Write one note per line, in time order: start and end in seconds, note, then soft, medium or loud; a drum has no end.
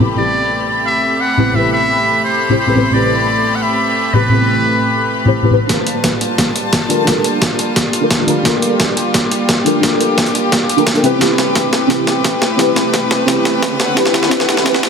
0.00 5.65 A3 medium
0.00 5.65 C4 medium
0.00 0.09 E4 medium
0.00 5.65 G4 medium
0.00 0.10 G4 medium
0.00 0.10 B4 loud
0.00 5.65 B5 medium
0.15 1.35 A2 medium
0.15 1.36 C4 medium
0.15 1.36 E4 medium
0.15 0.66 D5 medium
0.19 1.37 G4 medium
0.19 1.38 B4 medium
0.87 1.22 E5 loud
1.21 1.57 F#5 loud
1.37 1.52 A2 medium
1.37 1.53 C4 medium
1.37 1.54 E4 medium
1.37 1.54 G4 medium
1.37 1.54 B4 medium
1.53 2.47 A2 medium
1.53 2.48 C4 medium
1.53 2.48 E4 medium
1.53 1.72 E5 loud
1.57 2.49 G4 medium
1.57 2.50 B4 medium
1.73 2.21 E5 loud
2.25 2.57 C5 medium
2.49 2.55 A2 medium
2.49 2.56 C4 medium
2.49 2.56 E4 medium
2.49 2.56 G4 medium
2.49 2.57 C5 medium
2.59 2.95 C5 medium
2.66 2.73 A2 medium
2.66 2.74 C4 medium
2.66 2.74 E4 medium
2.66 2.75 G4 medium
2.66 2.75 B4 medium
2.75 2.84 A2 medium
2.75 2.85 C4 medium
2.75 2.85 E4 medium
2.75 2.86 G4 medium
2.75 2.86 B4 loud
2.91 4.11 A2 medium
2.91 4.12 C4 medium
2.91 4.12 E4 medium
2.91 3.57 D5 loud
2.95 4.13 G4 medium
2.95 4.14 B4 medium
3.55 3.64 F#5 medium
3.63 4.16 E5 loud
4.13 4.27 A2 medium
4.13 4.29 C4 medium
4.13 4.29 E4 medium
4.13 4.30 G4 medium
4.13 5.35 B4 medium
4.13 4.30 B4 medium
4.29 5.23 A2 medium
4.29 5.24 C4 medium
4.29 5.24 E4 medium
4.33 5.25 G4 medium
4.33 5.26 B4 medium
5.25 5.31 A2 medium
5.25 5.31 C4 medium
5.25 5.32 E4 medium
5.25 5.32 G4 medium
5.25 5.33 C5 medium
5.42 5.49 A2 medium
5.42 5.50 C4 medium
5.42 5.50 E4 medium
5.42 5.50 G4 medium
5.42 5.51 B4 medium
5.50 5.60 A2 medium
5.50 5.61 C4 medium
5.50 5.61 E4 medium
5.50 5.61 G4 medium
5.50 5.62 B4 loud
5.67 11.00 G3 medium
5.67 11.00 A#3 medium
5.67 6.87 D4 medium
5.67 6.88 F4 medium
5.67 11.00 F4 medium
5.67 6.88 A4 medium
5.67 8.42 A5 medium
5.67 kick medium
5.67 snare soft
5.67 closed hi-hat medium
5.72 6.89 A#4 medium
5.87 closed hi-hat medium
6.04 kick medium
6.04 snare soft
6.04 closed hi-hat medium
6.21 closed hi-hat medium
6.38 kick loud
6.38 snare soft
6.38 closed hi-hat medium
6.56 closed hi-hat medium
6.73 kick loud
6.73 snare soft
6.73 closed hi-hat medium
6.88 7.03 D4 medium
6.88 7.05 F4 medium
6.88 7.05 A4 medium
6.88 7.06 A#4 medium
6.88 closed hi-hat medium
7.04 7.99 D4 medium
7.04 8.00 F4 medium
7.04 8.00 A4 medium
7.04 kick loud
7.04 snare soft
7.04 closed hi-hat medium
7.10 8.01 A#4 medium
7.24 closed hi-hat medium
7.42 kick medium
7.42 snare medium
7.42 closed hi-hat medium
7.59 closed hi-hat medium
7.76 kick loud
7.76 snare medium
7.76 closed hi-hat medium
7.93 closed hi-hat medium
8.01 8.07 D4 medium
8.01 8.07 F4 medium
8.01 8.08 A4 medium
8.01 8.08 A#4 medium
8.11 kick loud
8.11 snare medium
8.11 closed hi-hat medium
8.18 8.25 D4 medium
8.18 8.26 F4 medium
8.18 8.26 A4 medium
8.18 8.26 A#4 medium
8.26 8.36 D4 medium
8.26 8.37 F4 medium
8.26 8.37 A4 medium
8.26 8.38 A#4 loud
8.26 closed hi-hat medium
8.42 9.62 D4 medium
8.42 9.63 F4 medium
8.42 13.76 G4 medium
8.42 9.64 A4 medium
8.42 kick medium
8.42 snare medium
8.42 closed hi-hat medium
8.48 9.65 A#4 medium
8.62 closed hi-hat medium
8.80 kick medium
8.80 snare medium
8.80 closed hi-hat medium
8.97 closed hi-hat medium
9.14 kick loud
9.14 snare medium
9.14 closed hi-hat medium
9.31 closed hi-hat medium
9.49 kick loud
9.49 snare medium
9.49 closed hi-hat medium
9.65 9.79 D4 medium
9.65 9.81 F4 medium
9.65 9.81 A4 medium
9.65 9.82 A#4 medium
9.65 closed hi-hat medium
9.80 10.75 D4 medium
9.80 10.76 F4 medium
9.80 10.76 A4 medium
9.80 kick medium
9.80 snare medium
9.80 closed hi-hat medium
9.86 10.77 A#4 medium
10.01 closed hi-hat medium
10.18 kick medium
10.18 snare medium
10.18 closed hi-hat medium
10.26 closed hi-hat soft
10.35 closed hi-hat medium
10.52 kick loud
10.52 snare medium
10.52 closed hi-hat medium
10.69 closed hi-hat medium
10.77 10.83 D4 medium
10.77 10.83 F4 medium
10.77 10.84 A4 medium
10.77 10.84 A#4 medium
10.77 closed hi-hat soft
10.87 kick loud
10.87 snare medium
10.87 closed hi-hat medium
10.94 11.01 D4 medium
10.94 11.01 F4 medium
10.94 11.02 A4 medium
10.94 11.02 A#4 medium
10.94 closed hi-hat soft
11.02 14.89 A3 medium
11.02 11.12 C4 medium
11.02 14.89 C4 medium
11.02 11.12 E4 medium
11.02 11.13 G4 medium
11.02 14.89 B4 medium
11.02 11.13 B4 loud
11.02 closed hi-hat medium
11.18 11.86 C4 medium
11.18 11.88 E4 medium
11.18 11.89 G4 medium
11.18 kick loud
11.18 snare medium
11.18 closed hi-hat medium
11.18 riser medium
11.24 11.90 B4 medium
11.38 snare medium
11.38 closed hi-hat medium
11.55 kick loud
11.55 snare medium
11.55 closed hi-hat medium
11.73 snare medium
11.73 closed hi-hat medium
11.87 12.55 C4 medium
11.87 12.57 E4 medium
11.87 12.58 G4 medium
11.87 kick loud
11.87 snare medium
11.87 closed hi-hat medium
11.93 12.59 B4 medium
12.07 snare medium
12.07 closed hi-hat medium
12.24 kick loud
12.24 snare medium
12.24 closed hi-hat medium
12.42 snare medium
12.42 closed hi-hat medium
12.56 13.24 C4 medium
12.56 13.26 E4 medium
12.56 13.27 G4 medium
12.56 kick loud
12.56 snare medium
12.56 closed hi-hat medium
12.62 13.28 B4 medium
12.76 snare medium
12.76 closed hi-hat medium
12.94 kick loud
12.94 snare medium
12.94 closed hi-hat medium
13.11 snare medium
13.11 closed hi-hat medium
13.25 13.93 C4 medium
13.25 13.95 E4 medium
13.25 13.96 G4 medium
13.25 kick loud
13.25 snare medium
13.25 closed hi-hat medium
13.31 13.97 B4 medium
13.45 snare medium
13.45 closed hi-hat medium
13.62 kick loud
13.62 snare medium
13.62 closed hi-hat medium
13.80 14.89 F#5 loud
13.80 snare medium
13.80 closed hi-hat medium
13.94 14.28 C4 medium
13.94 14.29 E4 medium
13.94 14.31 G4 medium
13.94 kick loud
13.94 snare medium
13.94 closed hi-hat medium
14.00 14.31 B4 medium
14.06 snare medium
14.14 snare medium
14.14 closed hi-hat medium
14.23 snare medium
14.29 14.62 C4 medium
14.29 14.64 E4 medium
14.29 14.65 G4 medium
14.29 kick loud
14.29 snare medium
14.29 closed hi-hat medium
14.34 14.66 B4 medium
14.40 snare medium
14.49 snare medium
14.49 closed hi-hat medium
14.57 snare medium
14.63 14.89 C4 medium
14.63 14.89 E4 medium
14.63 14.89 G4 medium
14.63 kick loud
14.63 snare loud
14.63 closed hi-hat medium
14.69 14.89 B4 medium
14.75 snare medium
14.83 snare loud
14.83 closed hi-hat medium